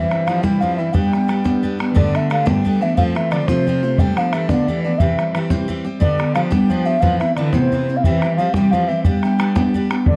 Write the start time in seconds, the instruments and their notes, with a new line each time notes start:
Already playing: accordion G2, steel-string acoustic guitar C3 E3 G3 C4, cello E3, flute E5
0.11 steel-string acoustic guitar G3 C4 E4, bodhran
0.27 steel-string acoustic guitar E3 G3 C4 E4, cello F3, flute F5, bodhran
0.41 steel-string acoustic guitar C3 E3 G3 C4 E4, cello G3, flute G5, bodhran
0.60 steel-string acoustic guitar E3 G3 C4 E4, cello F3, flute F5, bodhran
0.76 cello E3, steel-string acoustic guitar C4 E4, flute E5
0.80 steel-string acoustic guitar G3
0.92 steel-string acoustic guitar G3 B3 D4 G4, cello G3, flute G5, bodhran
1.13 steel-string acoustic guitar B3 D4 G4, bodhran
1.28 steel-string acoustic guitar G3 B3 D4 G4, bodhran
1.44 steel-string acoustic guitar G3 B3 D4 G4, bodhran
1.63 steel-string acoustic guitar G3 B3 D4 G4, bodhran
1.79 steel-string acoustic guitar B3 D4 G4, bodhran
1.90 cello E3
1.95 steel-string acoustic guitar G2 D3 G3 A3 B3 D4, cello D3, flute D5, bodhran
2.15 steel-string acoustic guitar G3 A3 B3 D4, flute E5, bodhran
2.30 steel-string acoustic guitar G3 A3 B3 D4, flute F5, bodhran
2.45 steel-string acoustic guitar G2 D3 G3 A3 B3 D4, cello G3, flute G5, bodhran
2.65 steel-string acoustic guitar G3 A3 B3 D4, bodhran
2.81 cello E3, steel-string acoustic guitar G3 A3 B3 D4, flute E5
2.96 steel-string acoustic guitar F3 A3 C4 F4, cello F3, flute F5, bodhran
3.15 cello E3, steel-string acoustic guitar A3 C4 F4, flute E5, bodhran
3.31 cello D3, steel-string acoustic guitar F3 A3 C4 F4, flute D5, bodhran
3.46 cello C3, steel-string acoustic guitar F3 A3 C4 F4, flute C5, bodhran
3.67 steel-string acoustic guitar F3 A3 C4 F4, bodhran
3.83 steel-string acoustic guitar A3 C4 F4
3.98 cello G3, steel-string acoustic guitar G3 A3 B3 D4, flute G5, bodhran
4.16 cello F3, steel-string acoustic guitar A3 B3 D4, flute F5, bodhran
4.32 cello E3, steel-string acoustic guitar G3 A3 B3 D4, flute E5, bodhran
4.47 cello D3, steel-string acoustic guitar G3 A3 B3 D4, flute D5, bodhran
4.67 cello E3, steel-string acoustic guitar G3 A3 B3 D4, bodhran
4.83 steel-string acoustic guitar A3 B3 D4, flute D5
4.98 steel-string acoustic guitar C3 E3 G3 C4 G4, cello E3, flute E5, bodhran
5.19 steel-string acoustic guitar G3 C4 G4, bodhran
5.35 steel-string acoustic guitar E3 G3 C4 G4, bodhran
5.50 steel-string acoustic guitar C3 E3 G3 C4 G4, bodhran
5.68 steel-string acoustic guitar E3 G3 C4 G4, bodhran
5.85 steel-string acoustic guitar G3 C4 G4
5.99 cello D3, steel-string acoustic guitar G3 B3 D4 G4, flute D5, bodhran
6.19 steel-string acoustic guitar B3 D4 G4, bodhran
6.35 cello F3, steel-string acoustic guitar G3 B3 D4 G4, flute F5, bodhran
6.50 cello G3, steel-string acoustic guitar G3 B3 D4 G4, flute G5, bodhran
6.70 cello F3, steel-string acoustic guitar G3 B3 D4 G4, bodhran
6.85 steel-string acoustic guitar B3 D4 G4, flute E5
7.00 steel-string acoustic guitar A2 E3 B3 C4 E4, cello F3, flute F5, bodhran
7.19 cello E3, steel-string acoustic guitar B3 C4 E4, flute E5, bodhran
7.35 cello D3, steel-string acoustic guitar E3 B3 C4 E4, flute D5, bodhran
7.51 steel-string acoustic guitar A2 E3 B3 C4 E4, cello C3, flute C5, bodhran
7.72 steel-string acoustic guitar E3 B3 C4 E4, bodhran
7.89 steel-string acoustic guitar B3 C4 E4
7.96 flute F5
8.02 steel-string acoustic guitar C3 E3 G3 C4 G4, cello E3, flute E5, bodhran
8.22 steel-string acoustic guitar G3 C4 G4, bodhran
8.36 steel-string acoustic guitar E3 G3 C4, cello F3, flute F5
8.40 steel-string acoustic guitar G4
8.53 steel-string acoustic guitar C3 E3 G3 C4 G4, cello G3, flute G5, bodhran
8.71 steel-string acoustic guitar E3 G3 C4 G4, cello F3, flute F5, bodhran
8.87 cello E3, steel-string acoustic guitar G3 C4 G4, flute E5
9.03 cello G3, steel-string acoustic guitar G3 B3 D4 G4, flute G5, bodhran
9.23 steel-string acoustic guitar B3 D4 G4, bodhran
9.39 steel-string acoustic guitar G3 B3 D4 G4, bodhran
9.55 steel-string acoustic guitar G3 B3 D4 G4, bodhran
9.74 steel-string acoustic guitar G3 B3 D4 G4, bodhran
9.90 steel-string acoustic guitar B3 D4 G4, bodhran
10.05 cello D3, flute D5, bodhran